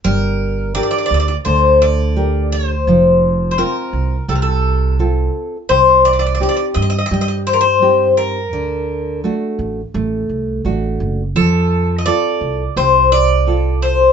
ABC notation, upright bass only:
X:1
M:4/4
L:1/8
Q:1/4=85
K:Gm
V:1 name="Upright bass" clef=bass
G,,,3 D,, D,,4 | F,,,3 C,, C,,4 | C,,3 G,, G,,4 | D,,3 A,,, A,,, C,, A,,, ^F,,, |
F,,3 C,, C,,4 |]